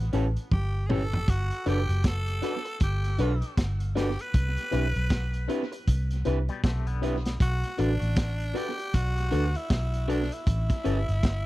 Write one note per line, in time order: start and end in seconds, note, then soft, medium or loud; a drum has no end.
0.00 0.11 A1 medium
0.00 0.14 B3 loud
0.13 0.35 A1 loud
0.13 0.25 C#4 medium
0.13 0.29 C#4 medium
0.13 0.29 E4 medium
0.13 0.29 G4 medium
0.13 0.25 G4 medium
0.13 0.26 A4 medium
0.13 0.29 B4 loud
0.13 closed hi-hat medium
0.36 closed hi-hat medium
0.51 1.24 G1 medium
0.51 0.88 G4 medium
0.51 kick loud
0.51 high tom medium
0.86 1.02 C#4 medium
0.86 1.05 C#4 loud
0.86 1.05 E4 medium
0.86 1.05 G4 medium
0.86 0.93 G#4 medium
0.86 mid tom medium
0.90 1.02 G4 medium
0.90 1.02 A4 medium
0.90 1.31 A4 loud
0.90 1.06 B4 loud
1.13 floor tom loud
1.28 1.50 G1 loud
1.28 1.67 F#4 loud
1.28 kick loud
1.28 closed hi-hat medium
1.51 closed hi-hat medium
1.66 1.88 F#1 medium
1.66 1.78 D4 medium
1.66 1.82 D4 medium
1.66 1.82 F#4 medium
1.66 1.79 F#4 medium
1.66 2.03 G4 loud
1.66 1.82 A4 medium
1.66 1.82 B4 loud
1.66 1.79 B4 medium
1.66 closed hi-hat medium
1.89 2.40 F#1 medium
1.89 closed hi-hat medium
2.04 2.78 A4 loud
2.04 kick loud
2.04 snare loud
2.04 closed hi-hat loud
2.27 closed hi-hat medium
2.42 2.54 D4 medium
2.42 2.58 D4 medium
2.42 2.58 F#4 medium
2.42 2.55 F#4 medium
2.42 2.58 A4 medium
2.42 2.58 B4 loud
2.42 2.55 B4 medium
2.42 closed hi-hat medium
2.65 muted clean electric guitar stroke soft
2.65 closed hi-hat medium
2.80 3.17 G1 loud
2.80 3.55 G4 medium
2.80 kick loud
2.80 closed hi-hat medium
3.04 closed hi-hat medium
3.18 3.41 B1 loud
3.18 3.34 D4 medium
3.18 3.31 D4 medium
3.18 3.34 F#4 medium
3.18 3.32 F#4 medium
3.18 3.35 A4 medium
3.18 3.35 B4 loud
3.18 3.32 B4 loud
3.18 closed hi-hat medium
3.42 closed hi-hat medium
3.57 4.16 G1 medium
3.57 kick loud
3.57 snare loud
3.57 closed hi-hat loud
3.80 closed hi-hat medium
3.95 4.08 D4 medium
3.95 4.11 D4 medium
3.95 4.11 F#4 medium
3.95 4.08 F#4 medium
3.95 4.23 G4 medium
3.95 4.11 A4 medium
3.95 4.12 B4 loud
3.95 4.08 B4 loud
3.95 snare medium
3.95 closed hi-hat medium
4.19 4.25 A4 soft
4.19 4.25 B4 soft
4.19 5.73 B4 loud
4.19 closed hi-hat medium
4.34 4.56 C2 medium
4.34 kick loud
4.34 closed hi-hat medium
4.57 closed hi-hat medium
4.71 4.95 B1 loud
4.71 4.84 C4 medium
4.71 4.87 D4 loud
4.71 4.87 E4 medium
4.71 4.85 E4 medium
4.71 4.88 G4 medium
4.71 4.87 B4 loud
4.71 4.85 B4 medium
4.71 closed hi-hat medium
4.95 5.47 B1 medium
4.95 closed hi-hat medium
5.10 kick loud
5.10 snare loud
5.10 closed hi-hat loud
5.34 closed hi-hat medium
5.48 5.61 C4 loud
5.48 5.64 D4 loud
5.48 5.64 E4 medium
5.48 5.61 E4 medium
5.48 5.64 G4 medium
5.48 5.64 B4 loud
5.48 5.61 B4 medium
5.48 closed hi-hat medium
5.72 5.78 G4 soft
5.72 5.78 B4 soft
5.72 muted clean electric guitar stroke medium
5.72 closed hi-hat medium
5.88 6.24 C2 medium
5.88 kick loud
5.88 closed hi-hat medium
6.11 closed hi-hat medium
6.25 6.48 C2 loud
6.25 6.37 C4 medium
6.25 6.41 D4 medium
6.25 6.41 E4 medium
6.25 6.38 E4 medium
6.25 6.41 G4 medium
6.25 6.41 B4 loud
6.25 6.38 B4 medium
6.25 closed hi-hat medium
6.49 6.63 B2 medium
6.49 6.63 G3 medium
6.49 closed hi-hat soft
6.64 7.37 B1 loud
6.64 6.86 C3 medium
6.64 6.86 A3 medium
6.64 kick loud
6.64 snare loud
6.64 closed hi-hat loud
6.87 7.38 D3 medium
6.87 7.38 B3 medium
6.87 closed hi-hat medium
7.02 7.14 C4 medium
7.02 7.17 D4 medium
7.02 7.18 E4 medium
7.02 7.15 E4 medium
7.02 7.18 G4 medium
7.02 7.18 B4 loud
7.02 7.15 B4 loud
7.02 closed hi-hat medium
7.25 snare medium
7.25 closed hi-hat medium
7.40 7.62 B1 loud
7.40 7.82 F#4 loud
7.40 kick loud
7.40 closed hi-hat medium
7.63 closed hi-hat medium
7.78 8.01 A1 loud
7.78 7.94 D4 loud
7.78 7.91 D4 medium
7.78 8.58 D4 loud
7.78 7.94 F#4 medium
7.78 7.91 F#4 medium
7.78 7.94 A4 medium
7.78 7.91 A4 medium
7.78 7.94 B4 loud
7.78 closed hi-hat medium
8.01 8.52 A1 medium
8.01 closed hi-hat medium
8.16 kick loud
8.16 snare loud
8.16 closed hi-hat loud
8.40 closed hi-hat medium
8.54 8.70 D4 loud
8.54 8.67 D4 loud
8.54 8.70 F#4 medium
8.54 8.67 F#4 medium
8.54 8.96 G4 loud
8.54 8.70 A4 medium
8.54 8.67 A4 loud
8.54 8.70 B4 loud
8.54 closed hi-hat medium
8.78 muted clean electric guitar stroke soft
8.78 closed hi-hat medium
8.94 9.30 B1 loud
8.94 9.57 F#4 loud
8.94 kick loud
8.94 closed hi-hat medium
9.17 closed hi-hat soft
9.31 9.54 D2 medium
9.31 9.43 D4 medium
9.31 9.47 D4 medium
9.31 9.47 F#4 medium
9.31 9.44 F#4 medium
9.31 9.47 A4 medium
9.31 9.44 A4 medium
9.31 9.47 B4 loud
9.31 closed hi-hat medium
9.55 10.12 E4 loud
9.55 closed hi-hat medium
9.70 10.29 B1 loud
9.70 kick loud
9.70 snare loud
9.70 closed hi-hat loud
9.94 closed hi-hat medium
10.08 10.24 D4 medium
10.08 10.20 D4 medium
10.08 10.35 D4 medium
10.08 10.24 F#4 medium
10.08 10.20 F#4 medium
10.08 10.24 A4 medium
10.08 10.21 A4 loud
10.08 10.24 B4 loud
10.08 closed hi-hat medium
10.31 11.46 E4 medium
10.31 10.37 A4 soft
10.31 10.37 B4 soft
10.31 closed hi-hat medium
10.47 10.69 A1 loud
10.47 kick loud
10.47 closed hi-hat medium
10.70 kick loud
10.70 closed hi-hat medium
10.84 11.07 G1 loud
10.84 11.00 C#4 medium
10.84 10.97 C#4 medium
10.84 11.00 E4 medium
10.84 11.00 G4 medium
10.84 10.97 G4 medium
10.84 10.97 A4 loud
10.84 11.00 B4 loud
10.84 closed hi-hat medium
11.09 11.46 G1 medium
11.09 closed hi-hat medium
11.23 kick loud
11.23 snare loud
11.23 closed hi-hat loud